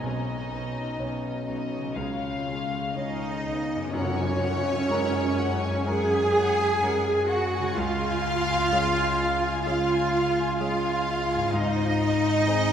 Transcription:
0.00 0.10 B1 medium
0.00 0.97 B1 soft
0.00 1.92 B2 soft
0.00 0.11 B2 medium
0.00 1.93 F#3 medium
0.00 1.94 B3 soft
0.00 0.49 B3 medium
0.00 1.86 C#4 soft
0.00 0.49 C#4 medium
0.00 3.57 C#4 medium
0.00 1.45 D#4 medium
0.00 1.91 C#5 soft
0.00 1.45 D#5 medium
0.50 0.59 B1 medium
0.50 0.59 B2 soft
0.50 0.98 B3 soft
0.50 0.98 C#4 soft
0.99 1.07 B1 medium
0.99 1.08 B2 soft
0.99 1.92 B3 soft
0.99 1.46 B3 soft
0.99 1.46 C#4 soft
0.99 1.93 C#4 soft
0.99 1.93 C#5 soft
1.47 1.56 B1 soft
1.47 1.56 B2 soft
1.47 1.96 B3 soft
1.47 1.96 C#4 soft
1.47 1.96 D#4 soft
1.47 1.96 D#5 medium
1.78 3.88 C#3 soft
1.83 3.79 G#3 soft
1.87 3.84 C#4 soft
1.92 5.82 C#5 soft
1.96 2.93 C#2 soft
1.96 2.05 C#2 soft
1.96 2.05 C#3 medium
1.96 2.45 G#3 soft
1.96 3.58 G#3 medium
1.96 2.45 C#4 soft
1.96 2.96 F4 medium
1.96 3.45 F5 medium
2.46 2.54 C#2 soft
2.46 2.55 C#3 soft
2.46 2.95 G#3 soft
2.46 2.94 C#4 soft
2.95 3.03 C#2 soft
2.95 3.04 C#3 soft
2.95 3.90 G#3 soft
2.95 3.42 C#4 medium
2.95 3.90 C#4 soft
2.95 3.90 D#4 medium
2.95 3.90 C#5 soft
2.95 3.90 D#5 medium
3.45 3.53 C#2 soft
3.45 3.54 C#3 soft
3.45 3.94 B3 medium
3.76 7.66 F#2 medium
3.81 7.62 G#3 medium
3.85 7.67 C#4 medium
3.89 7.73 F#2 medium
3.89 4.86 F#2 medium
3.89 7.79 A#4 soft
3.94 5.86 C#4 medium
3.94 5.87 C#4 medium
3.94 5.87 C#5 loud
3.94 4.16 F#5 medium
3.94 tam-tam medium
4.18 4.42 G#5 medium
4.43 4.66 F#5 medium
4.67 4.90 G#5 medium
4.89 5.82 G#3 medium
4.89 5.83 C#4 soft
4.89 5.83 A#4 medium
4.89 5.13 F#5 medium
5.15 5.38 G#5 medium
5.38 5.62 F#5 medium
5.63 5.87 G#5 medium
5.86 6.78 G#3 soft
5.86 6.79 C#4 soft
5.86 7.30 G#4 loud
5.86 6.79 A#4 medium
5.86 6.10 F#5 medium
5.86 7.30 G#5 medium
6.11 6.35 G#5 medium
6.35 6.59 F#5 medium
6.59 6.82 G#5 medium
6.83 7.74 G#3 medium
6.83 7.74 C#4 medium
6.83 7.74 A#4 medium
6.83 7.05 F#5 medium
7.06 7.30 G#5 medium
7.30 7.77 F#4 medium
7.30 7.77 F#5 medium
7.30 7.54 F#5 medium
7.55 11.48 C#3 medium
7.55 7.78 G#5 medium
7.63 11.53 G#3 soft
7.68 11.53 C#4 soft
7.73 11.48 G#4 soft
7.77 8.69 C#2 medium
7.77 11.50 C#2 medium
7.77 9.65 F4 loud
7.77 9.63 F4 loud
7.77 9.64 F5 loud
7.77 8.00 F5 medium
8.02 8.26 G#5 medium
8.26 8.49 F5 medium
8.50 8.73 G#5 medium
8.72 9.62 G#3 medium
8.72 9.62 C#4 medium
8.72 9.62 G#4 medium
8.72 8.94 F5 medium
8.97 9.20 G#5 medium
9.20 9.43 F5 medium
9.43 9.67 G#5 medium
9.65 10.56 G#3 medium
9.65 10.57 C#4 soft
9.65 10.58 F4 medium
9.65 10.59 F4 loud
9.65 10.57 G#4 medium
9.65 10.58 F5 medium
9.65 9.89 F5 medium
9.91 10.14 G#5 medium
10.15 10.38 F5 medium
10.39 10.61 G#5 medium
10.60 11.50 G#3 medium
10.60 11.50 C#4 soft
10.60 11.52 F4 medium
10.60 11.52 F4 loud
10.60 11.50 G#4 medium
10.60 11.52 F5 medium
10.60 10.83 F5 medium
10.86 11.08 G#5 medium
11.09 11.32 F5 medium
11.32 12.73 G#2 medium
11.32 11.55 G#5 medium
11.40 12.73 C4 soft
11.44 12.73 D#4 soft
11.49 12.73 G#4 medium
11.53 12.73 G#1 medium
11.53 12.45 G#2 medium
11.53 12.73 D#4 medium
11.53 12.73 D#4 loud
11.53 12.73 D#5 loud
11.53 11.76 D#5 medium
11.78 12.01 C5 medium
12.02 12.25 D#5 medium
12.25 12.48 C5 medium
12.48 12.73 C4 medium
12.48 12.73 D#4 soft
12.48 12.73 G#4 medium
12.48 12.70 D#5 medium

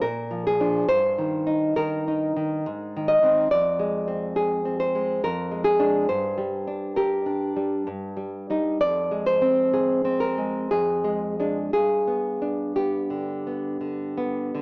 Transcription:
0.02 0.86 A#2 medium
0.02 0.44 A#4 medium
0.31 0.59 F3 soft
0.47 0.87 G#4 medium
0.60 0.86 F3 soft
0.60 0.86 D4 soft
0.88 2.61 G2 medium
0.88 1.72 C5 medium
1.19 1.76 D#3 soft
1.47 2.07 D#4 soft
1.76 2.35 D#3 soft
1.76 3.04 A#4 medium
2.08 2.66 D#4 soft
2.37 2.65 D#3 soft
2.66 3.47 G#2 medium
2.96 3.21 D#3 soft
3.08 3.48 D#5 medium
3.22 3.47 D#3 soft
3.22 3.48 C4 soft
3.51 5.20 F2 medium
3.51 4.75 D5 medium
3.79 4.94 G#3 soft
4.08 4.64 C4 soft
4.36 4.79 G#4 soft
4.65 5.22 C4 soft
4.80 5.21 C5 medium
4.95 5.23 G#3 soft
5.24 6.08 F2 medium
5.24 5.65 A#4 medium
5.51 5.79 G#3 soft
5.64 6.07 G#4 medium
5.80 6.07 G#3 soft
5.80 6.06 D4 soft
6.09 7.83 G2 medium
6.09 6.94 C5 medium
6.38 7.55 G3 soft
6.67 6.97 D4 soft
6.96 7.87 G4 soft
6.96 8.30 A#4 medium
7.26 7.87 D4 soft
7.56 7.87 G3 soft
7.87 8.77 G2 medium
8.17 8.49 G3 soft
8.50 8.77 G3 soft
8.50 8.78 D#4 soft
8.81 10.67 F2 medium
8.81 9.25 D5 medium
9.11 10.37 G#3 soft
9.26 10.17 C5 medium
9.42 10.04 C4 soft
9.74 10.70 G#4 soft
10.05 10.70 C4 soft
10.20 10.68 A#4 medium
10.38 10.71 G#3 soft
10.71 11.70 F2 soft
10.71 11.69 G#4 medium
11.04 11.39 G#3 soft
11.40 11.70 G#3 soft
11.40 11.70 D4 soft
11.73 14.62 G2 soft
11.73 12.73 G#4 medium
12.08 12.75 B3 soft
12.42 13.99 D4 soft
12.76 13.46 B3 soft
12.76 14.31 G4 soft
13.10 13.80 D3 soft
13.47 14.16 B3 soft
13.81 14.53 D3 soft
14.18 14.62 B3 soft
14.55 14.62 D3 soft

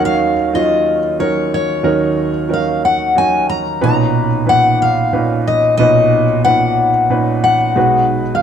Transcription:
0.00 1.80 D#2 medium
0.00 1.80 D#3 soft
0.00 0.33 F#3 medium
0.00 0.33 C#4 medium
0.00 0.33 D#4 medium
0.00 0.33 A#4 medium
0.05 0.57 F5 medium
0.53 0.99 F#3 soft
0.53 0.98 C#4 soft
0.53 0.99 D#4 soft
0.53 0.99 F4 medium
0.53 1.20 D#5 medium
1.19 1.64 F#3 medium
1.19 1.64 C#4 soft
1.19 1.65 D#4 soft
1.19 1.65 A#4 medium
1.19 1.53 C#5 medium
1.54 2.54 C#5 medium
1.83 3.78 D#2 soft
1.83 3.78 D#3 soft
1.83 2.29 F#3 medium
1.83 2.29 C#4 medium
1.83 2.30 D#4 medium
1.83 2.30 A#4 medium
2.49 2.95 F#3 soft
2.49 2.95 C#4 soft
2.49 2.95 D#4 soft
2.49 2.95 A#4 medium
2.53 2.85 F5 medium
2.85 3.18 F#5 medium
3.15 3.61 F#3 soft
3.15 3.61 C#4 soft
3.15 3.61 D#4 soft
3.15 3.62 F#4 medium
3.15 3.48 G#5 medium
3.49 3.82 A#5 medium
3.81 5.75 B1 soft
3.81 4.27 A#2 medium
3.81 5.75 B2 soft
3.81 4.27 C#4 medium
3.81 4.27 D#4 medium
3.81 4.27 B4 medium
3.81 4.49 A#5 medium
4.46 4.92 A#2 soft
4.46 4.92 C#4 soft
4.46 4.93 D#4 soft
4.46 4.92 B4 medium
4.46 4.82 F#5 medium
4.82 5.43 F5 medium
5.13 5.58 A#2 medium
5.13 5.58 C#4 soft
5.13 5.59 D#4 soft
5.13 5.58 B4 medium
5.47 5.76 D#5 medium
5.77 7.72 B1 soft
5.77 6.24 A#2 medium
5.77 7.72 B2 medium
5.77 6.24 C#4 medium
5.77 6.25 D#4 medium
5.77 6.25 B4 medium
5.77 6.44 D#5 medium
6.44 6.90 A#2 medium
6.44 6.90 C#4 soft
6.44 6.90 D#4 soft
6.44 6.90 B4 medium
6.44 7.39 F#5 medium
7.10 7.55 A#2 medium
7.10 7.55 C#4 soft
7.10 7.55 D#4 soft
7.10 7.56 B4 medium
7.44 8.05 F#5 medium
7.76 8.42 B1 medium
7.76 8.42 B2 soft
7.76 8.21 G#3 medium
7.76 8.21 D#4 medium
7.76 8.21 F#4 medium
7.76 8.21 B4 medium
8.35 8.42 F5 medium

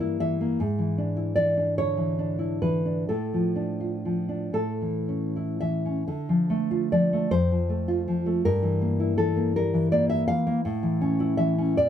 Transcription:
0.00 0.55 G2 medium
0.00 0.20 E3 soft
0.00 0.60 G3 medium
0.00 0.40 A#3 soft
0.00 0.60 E4 medium
0.00 0.17 A#4 medium
0.20 0.60 E3 medium
0.20 1.33 E5 loud
0.41 0.60 A#3 medium
0.60 3.05 G#2 medium
0.78 1.35 E3 medium
0.98 1.56 D4 medium
1.17 2.38 E4 medium
1.36 1.96 E3 medium
1.36 1.75 D5 medium
1.57 2.18 D4 medium
1.78 3.09 D3 medium
1.78 2.59 C#5 loud
1.97 2.61 E3 medium
2.19 2.84 D4 medium
2.39 3.08 E4 medium
2.62 3.08 E3 medium
2.62 3.06 B4 medium
2.86 3.09 D4 soft
3.09 4.51 A2 medium
3.09 4.52 A4 medium
3.34 4.04 F3 soft
3.56 4.28 D4 soft
3.80 4.55 F4 soft
4.05 4.55 F3 soft
4.29 4.55 D4 soft
4.53 6.04 A2 medium
4.53 5.58 A4 medium
4.82 5.60 E3 soft
5.09 5.84 C#4 soft
5.36 6.08 E4 soft
5.61 6.08 E3 soft
5.61 6.87 E5 medium
5.86 6.07 C#4 soft
6.08 7.27 D3 medium
6.29 6.91 F3 medium
6.50 7.12 A3 medium
6.71 7.31 F4 medium
6.92 7.31 F3 medium
6.92 7.30 D5 medium
7.13 7.32 A3 medium
7.31 8.41 F2 medium
7.31 8.40 C5 loud
7.52 8.07 F3 medium
7.69 8.25 A3 medium
7.88 8.44 F4 medium
8.08 8.45 F3 medium
8.26 8.44 A3 medium
8.45 10.27 G2 medium
8.45 9.15 A#4 loud
8.62 9.16 E3 medium
8.82 9.35 A#3 medium
9.00 10.08 E4 medium
9.17 9.72 E3 medium
9.17 9.53 A4 medium
9.36 9.56 A#3 medium
9.56 10.09 G3 medium
9.56 9.90 A#4 loud
9.74 10.27 E3 medium
9.92 10.45 A#3 medium
9.92 10.09 D5 loud
10.09 10.64 E4 medium
10.09 10.27 E5 loud
10.28 10.64 E3 medium
10.28 11.34 F5 loud
10.47 10.64 A#3 medium
10.65 11.75 A2 medium
10.83 11.37 E3 medium
11.01 11.57 C#4 medium
11.20 11.78 E4 medium
11.37 11.78 E3 medium
11.37 11.76 E5 loud
11.58 11.78 C#4 medium
11.77 11.89 A#2 medium
11.77 11.89 D5 loud

